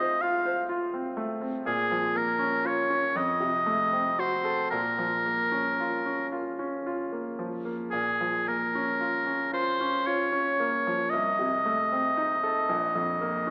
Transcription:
0.00 1.63 A2 soft
0.00 1.17 A3 soft
0.00 0.94 C4 soft
0.00 1.69 D#4 soft
0.00 0.14 F4 soft
0.00 0.37 C5 soft
0.00 0.23 D#5 medium
0.21 0.61 F4 soft
0.21 0.69 F5 medium
0.45 0.84 C5 soft
0.69 1.08 F4 soft
0.94 1.33 C4 soft
1.17 1.56 A3 soft
1.41 1.66 C4 soft
1.66 3.12 A#2 soft
1.66 2.18 G#4 medium
1.91 2.31 F3 soft
2.15 2.55 A#3 soft
2.15 2.68 A#4 soft
2.39 2.80 C#4 soft
2.65 3.06 F4 soft
2.65 3.18 C#5 medium
2.90 3.16 C#4 soft
3.15 4.67 F2 soft
3.15 4.21 D#5 medium
3.40 3.82 C3 soft
3.66 4.08 A3 soft
3.93 4.34 C4 soft
4.19 4.61 F#4 soft
4.19 4.70 C5 medium
4.45 4.71 A4 soft
4.70 7.89 A#2 soft
4.70 6.28 A#4 soft
4.98 5.41 F3 soft
5.25 5.68 A#3 soft
5.52 5.94 C#4 soft
5.80 6.22 F4 soft
6.06 6.49 C#4 soft
6.32 6.75 F4 soft
6.59 7.02 C#4 soft
6.86 7.29 F4 soft
7.12 7.55 A#3 soft
7.39 7.82 F3 soft
7.65 7.92 A#3 soft
7.90 11.09 A#2 soft
7.90 8.49 G#4 soft
8.21 8.64 F3 soft
8.48 8.90 A#3 soft
8.48 9.53 A#4 soft
8.75 9.17 C#4 soft
9.01 9.43 F4 soft
9.26 9.69 C#4 soft
9.53 9.95 F4 soft
9.53 10.07 C5 medium
9.81 10.23 C#4 soft
10.06 10.49 F4 soft
10.06 11.11 C#5 soft
10.32 10.75 C#4 soft
10.60 11.02 A#3 soft
10.87 11.13 F3 soft
11.10 12.66 C2 soft
11.10 13.50 D#5 medium
11.39 11.81 C3 soft
11.66 12.07 A3 soft
11.92 12.33 C4 soft
12.17 12.59 D#4 soft
12.43 12.69 A4 soft
12.69 13.50 A#1 soft
12.95 13.37 F2 soft
13.21 13.50 A#3 soft
13.47 13.50 C#4 soft

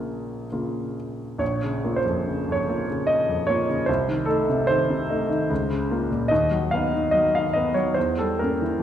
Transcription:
0.00 1.38 A#1 soft
0.00 0.46 C#3 soft
0.00 0.47 A#3 soft
0.00 0.47 F4 soft
0.00 0.96 A#4 soft
0.52 1.38 C#3 soft
0.52 1.38 A#3 soft
0.52 1.38 F4 soft
1.38 3.83 A#1 soft
1.38 1.98 C#5 medium
1.64 1.98 C#3 soft
1.84 2.04 A#3 soft
1.84 2.04 F4 soft
1.96 2.53 C5 medium
2.06 2.39 F2 soft
2.27 2.60 C#3 soft
2.48 2.80 F2 soft
2.48 3.07 C#5 medium
2.68 2.86 A#3 soft
2.68 2.87 F4 soft
2.90 3.53 C#3 soft
3.07 3.48 D#5 medium
3.29 3.61 F2 soft
3.47 3.66 A#3 soft
3.47 3.67 F4 soft
3.47 3.88 C#5 medium
3.69 3.89 C#3 soft
3.86 5.46 C2 soft
3.86 4.28 C5 medium
4.08 4.41 D#3 soft
4.26 4.46 A3 soft
4.26 4.47 D#4 soft
4.26 4.68 A4 medium
4.50 4.82 C3 soft
4.67 5.01 D#3 soft
4.67 6.30 C5 medium
4.90 5.22 C3 soft
5.09 5.28 A3 soft
5.09 5.28 D#4 soft
5.30 5.50 D#3 soft
5.50 6.28 C#2 soft
5.70 6.03 C#3 soft
5.91 6.09 A#3 soft
5.91 6.09 F4 soft
6.11 6.31 A#2 soft
6.28 7.92 D#2 soft
6.28 6.70 D#5 medium
6.51 6.84 F#3 soft
6.71 6.91 B3 soft
6.71 6.91 D#4 soft
6.71 7.12 F5 medium
6.93 7.25 D#3 soft
7.11 7.46 F#3 soft
7.11 7.32 D#5 medium
7.35 7.68 D#3 soft
7.35 7.55 F5 medium
7.53 7.74 B3 soft
7.53 7.74 D#4 soft
7.53 7.75 D#5 medium
7.74 7.96 F#3 soft
7.74 7.96 C#5 medium
7.94 8.83 E2 soft
7.94 8.17 C5 medium
8.18 8.54 G3 soft
8.18 8.40 A4 soft
8.39 8.61 A#3 soft
8.39 8.61 C#4 soft
8.39 8.83 A#4 soft
8.62 8.83 E3 soft
8.79 8.83 F2 soft

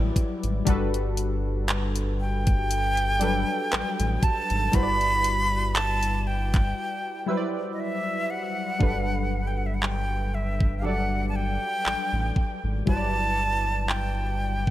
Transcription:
0.00 0.12 A1 medium
0.00 0.47 F#3 medium
0.00 0.46 G3 medium
0.00 0.47 E4 medium
0.00 0.48 B4 medium
0.00 0.49 D5 loud
0.00 0.12 G5 loud
0.16 kick loud
0.16 closed hi-hat medium
0.43 0.63 G#1 medium
0.43 closed hi-hat soft
0.65 3.45 G1 loud
0.65 2.42 G3 medium
0.65 2.43 D4 medium
0.65 2.44 F#4 medium
0.65 2.44 A4 medium
0.65 kick loud
0.65 closed hi-hat medium
0.70 2.45 B4 medium
0.94 closed hi-hat medium
1.17 closed hi-hat medium
1.68 clap loud
1.68 closed hi-hat medium
1.96 closed hi-hat medium
2.20 4.26 G5 loud
2.47 kick loud
2.47 closed hi-hat medium
2.71 closed hi-hat medium
2.97 closed hi-hat medium
3.19 4.54 F#3 medium
3.19 4.53 G3 medium
3.19 4.54 D4 medium
3.19 4.55 A4 medium
3.19 closed hi-hat medium
3.24 4.55 B4 medium
3.72 3.83 A1 medium
3.72 cross-stick medium
3.72 clap loud
3.72 closed hi-hat medium
4.00 4.19 A1 medium
4.00 closed hi-hat medium
4.23 5.21 A5 medium
4.23 4.76 A5 loud
4.23 kick loud
4.23 closed hi-hat medium
4.50 4.69 G#1 loud
4.50 closed hi-hat soft
4.72 6.73 G1 loud
4.72 6.49 G3 medium
4.72 6.50 E4 medium
4.72 6.50 F#4 medium
4.72 6.51 B4 medium
4.72 5.77 B5 loud
4.72 kick loud
4.72 closed hi-hat medium
4.76 4.82 C5 medium
4.83 6.55 D5 medium
5.01 closed hi-hat soft
5.24 closed hi-hat medium
5.75 6.29 A5 loud
5.75 clap loud
5.75 closed hi-hat medium
6.03 closed hi-hat medium
6.27 7.45 G5 medium
6.54 kick loud
6.54 clap medium
6.54 closed hi-hat soft
7.26 8.61 F#3 medium
7.26 8.60 G3 medium
7.26 8.60 E4 medium
7.26 8.61 B4 medium
7.26 9.28 E6 medium
7.31 7.36 C5 medium
7.37 8.65 D5 medium
7.73 7.81 D#5 medium
7.80 8.32 E5 medium
8.30 9.49 F#5 loud
8.79 11.58 G1 loud
8.79 10.57 F#3 medium
8.79 10.56 G3 medium
8.79 10.56 D4 medium
8.79 10.58 A4 medium
8.79 kick loud
8.83 10.58 B4 medium
9.47 9.59 G5 medium
9.57 9.68 F#5 medium
9.66 9.76 E5 medium
9.74 9.84 F#5 medium
9.83 10.36 G5 medium
9.83 clap loud
10.34 10.78 E5 medium
10.61 kick medium
10.78 12.59 G3 medium
10.78 10.86 F5 medium
10.83 12.61 F#3 medium
10.83 12.60 D4 medium
10.83 12.61 A4 medium
10.83 12.62 D5 medium
10.83 11.28 F#5 medium
11.29 11.37 A5 medium
11.36 12.63 G5 loud
11.86 11.97 A1 soft
11.86 clap loud
12.13 12.32 A1 medium
12.36 kick medium
12.64 12.83 G#1 medium
12.86 14.70 G1 loud
12.86 14.64 F#3 medium
12.86 14.63 G3 medium
12.86 14.63 E4 medium
12.86 14.65 B4 medium
12.86 13.91 A5 loud
12.86 kick loud
12.90 12.96 C5 medium
12.97 14.68 D5 medium
13.89 14.70 G5 medium
13.89 clap loud
14.67 kick medium

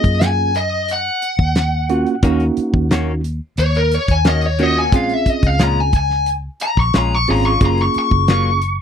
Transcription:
0.00 1.09 F#2 medium
0.00 0.51 A#3 medium
0.00 0.51 C#4 medium
0.00 0.51 F4 medium
0.00 0.51 G#4 loud
0.00 0.25 D#5 loud
0.00 kick medium
0.04 closed hi-hat soft
0.21 0.56 G#5 medium
0.21 snare loud
0.21 closed hi-hat medium
0.55 0.88 D#5 medium
0.55 closed hi-hat medium
0.88 closed hi-hat medium
0.93 2.88 F#5 loud
1.22 closed hi-hat medium
1.39 2.04 D#2 medium
1.39 kick medium
1.55 snare loud
1.55 closed hi-hat medium
1.89 2.14 A#3 medium
1.89 2.14 C#4 medium
1.89 2.14 F4 medium
1.89 2.14 F#4 medium
1.89 closed hi-hat medium
2.07 closed hi-hat soft
2.23 2.49 D#2 medium
2.23 2.43 D#3 medium
2.23 3.20 A#3 medium
2.23 2.43 A#3 medium
2.23 3.20 C#4 medium
2.23 2.44 C#4 medium
2.23 3.20 D#4 medium
2.23 3.20 F#4 medium
2.23 2.44 F#4 medium
2.23 kick loud
2.23 closed hi-hat medium
2.40 closed hi-hat soft
2.57 muted fingered electric bass stroke soft
2.57 closed hi-hat medium
2.74 3.39 D#2 medium
2.74 kick medium
2.91 3.11 D#3 loud
2.91 3.11 A#3 medium
2.91 3.12 C#4 loud
2.91 3.12 F#4 loud
2.91 snare loud
2.91 closed hi-hat medium
3.24 closed hi-hat medium
3.57 3.97 D#2 loud
3.57 3.75 C#5 loud
3.57 closed hi-hat medium
3.75 3.92 A#4 medium
3.75 closed hi-hat soft
3.91 4.09 C#5 loud
3.91 closed hi-hat medium
4.08 4.92 D#2 medium
4.08 4.26 G#5 medium
4.08 kick medium
4.08 closed hi-hat soft
4.25 4.45 D#3 medium
4.25 4.46 A#3 medium
4.25 4.46 C#4 medium
4.25 4.46 F#4 medium
4.25 4.46 D#5 medium
4.25 snare loud
4.25 closed hi-hat medium
4.42 closed hi-hat soft
4.46 4.63 C#5 medium
4.59 4.76 D#3 medium
4.59 4.76 A#3 medium
4.59 4.83 A#3 medium
4.59 4.83 C#4 medium
4.59 4.75 C#4 medium
4.59 4.83 F4 medium
4.59 4.83 F#4 medium
4.59 4.74 F#4 medium
4.59 closed hi-hat medium
4.63 4.77 D#5 loud
4.75 4.93 A#3 soft
4.75 4.93 C#4 soft
4.75 4.92 F#4 medium
4.75 4.96 G#5 medium
4.92 5.31 A#1 medium
4.92 5.13 A#2 medium
4.92 5.13 G#3 medium
4.92 5.90 C4 medium
4.92 5.90 C#4 medium
4.92 5.13 C#4 medium
4.92 5.90 F4 medium
4.92 5.13 F4 medium
4.92 5.90 G#4 medium
4.92 5.14 F5 medium
4.92 kick loud
4.92 closed hi-hat medium
5.09 closed hi-hat soft
5.14 5.30 E5 medium
5.26 5.47 D#5 medium
5.26 kick medium
5.26 closed hi-hat medium
5.43 6.48 C#2 medium
5.43 5.61 F5 loud
5.43 kick medium
5.43 closed hi-hat soft
5.59 5.80 A#2 medium
5.59 5.80 G#3 medium
5.59 5.80 C#4 medium
5.59 5.80 F4 medium
5.59 snare loud
5.59 closed hi-hat medium
5.63 5.80 A#5 loud
5.80 5.95 G#5 medium
5.93 kick medium
5.93 closed hi-hat medium
5.97 6.28 G#5 loud
6.10 snare soft
6.26 closed hi-hat medium
6.60 6.78 A#5 loud
6.60 closed hi-hat medium
6.77 6.90 A#1 medium
6.77 6.98 C#6 medium
6.77 kick medium
6.94 7.25 A#1 medium
6.94 7.15 A#2 medium
6.94 7.15 G#3 medium
6.94 7.15 C#4 medium
6.94 7.15 F4 medium
6.94 snare loud
6.94 closed hi-hat medium
6.98 7.15 A#5 medium
7.15 7.29 C#6 medium
7.27 7.59 G#1 medium
7.27 7.45 A#2 medium
7.27 7.46 G#3 medium
7.27 7.52 C4 medium
7.27 7.53 C#4 medium
7.27 7.45 C#4 medium
7.27 7.52 F4 medium
7.27 7.44 F4 medium
7.27 7.53 G#4 medium
7.27 7.46 A#5 medium
7.27 open hi-hat medium
7.44 7.62 C#4 soft
7.44 7.62 F4 soft
7.44 7.62 C#6 medium
7.44 closed hi-hat soft
7.48 7.63 G#3 soft
7.61 7.87 F#1 medium
7.61 7.82 F#3 medium
7.61 8.59 A#3 medium
7.61 7.83 A#3 medium
7.61 8.58 C#4 medium
7.61 7.83 C#4 medium
7.61 8.58 F4 medium
7.61 7.83 F4 medium
7.61 8.59 G#4 medium
7.61 kick loud
7.61 closed hi-hat medium
7.66 7.80 A#5 medium
7.78 closed hi-hat soft
7.82 7.97 C#6 loud
7.94 muted fingered electric bass stroke soft
7.94 closed hi-hat medium
7.99 8.82 C#6 medium
8.11 8.77 F#1 medium
8.11 kick medium
8.28 8.49 F#3 medium
8.28 8.50 A#3 medium
8.28 8.50 C#4 medium
8.28 8.50 F4 medium
8.28 snare loud
8.28 closed hi-hat medium
8.62 closed hi-hat medium

